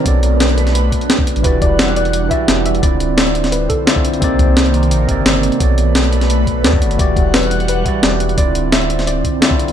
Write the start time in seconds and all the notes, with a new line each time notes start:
Already playing: D4
0.04 B1 A3 B3 F#4 A4 B4 C#5, kick, closed hi-hat
0.08 D5
0.23 closed hi-hat
0.40 snare, closed hi-hat
0.49 closed hi-hat
0.58 closed hi-hat
0.67 snare, closed hi-hat
0.75 closed hi-hat
0.92 kick, closed hi-hat
1.01 closed hi-hat
1.10 snare, closed hi-hat
1.19 kick
1.27 closed hi-hat
1.36 A1, closed hi-hat
1.42 E1 E3 G3 E4 F#4 G4 B4 F#5, kick, closed hi-hat
1.47 D5
1.62 D5, kick, closed hi-hat
1.79 snare, closed hi-hat
1.88 closed hi-hat
1.96 D5, closed hi-hat
2.05 closed hi-hat
2.13 closed hi-hat
2.29 E3 E4 F#4 G4 E5, kick, closed hi-hat
2.33 D5
2.48 E1, snare, closed hi-hat
2.66 E5, closed hi-hat
2.75 closed hi-hat
2.81 D1 D3 C4 E4 F4 D5, kick, closed hi-hat
2.85 D5
3.00 closed hi-hat
3.17 D5, snare, closed hi-hat
3.27 closed hi-hat
3.35 closed hi-hat
3.44 snare, closed hi-hat
3.52 B4, closed hi-hat
3.69 A4, kick, closed hi-hat
3.86 D3 C4 E4 F4 D5, snare, closed hi-hat
3.96 kick
4.05 closed hi-hat
4.14 closed hi-hat
4.20 C2 C3 D#3 A#3 C4 D#4, kick, closed hi-hat
4.24 D5
4.39 kick, closed hi-hat
4.57 snare, closed hi-hat
4.66 closed hi-hat
4.74 closed hi-hat
4.83 closed hi-hat
4.91 A#1, closed hi-hat
5.07 G1 C3 C4 D#4 A#4, kick, closed hi-hat
5.11 D5
5.26 snare, closed hi-hat
5.43 closed hi-hat
5.52 closed hi-hat
5.59 B1 A3 B3 F#4 A4 B4 C#5, kick, closed hi-hat
5.63 D5
5.78 closed hi-hat
5.95 snare, closed hi-hat
6.04 closed hi-hat
6.13 closed hi-hat
6.21 snare, closed hi-hat
6.30 closed hi-hat
6.47 B1, kick, closed hi-hat
6.63 E2 B3 F#4 A4 C#5 D5, snare, closed hi-hat
6.73 kick
6.82 F#1, closed hi-hat
6.91 closed hi-hat
6.97 E1 E3 G3 E4 F#4 G4 F#5, kick, closed hi-hat
7.01 D5
7.16 kick, closed hi-hat
7.34 B4, snare, closed hi-hat
7.43 closed hi-hat
7.51 closed hi-hat
7.60 closed hi-hat
7.68 B4, closed hi-hat
7.84 E3 E4 F#4 G4, kick, closed hi-hat
7.88 D5
8.03 E1 D5, snare, closed hi-hat
8.20 closed hi-hat
8.29 closed hi-hat
8.36 D1 D3 C4 E4 F4 D5, kick, closed hi-hat
8.40 D5
8.55 closed hi-hat
8.72 E5, snare, closed hi-hat
8.82 closed hi-hat
8.90 closed hi-hat
8.99 snare, closed hi-hat
9.07 D5, closed hi-hat
9.25 kick, closed hi-hat
9.41 D3 C4 E4 F4 D5, snare, closed hi-hat
9.51 kick
9.59 closed hi-hat
9.68 closed hi-hat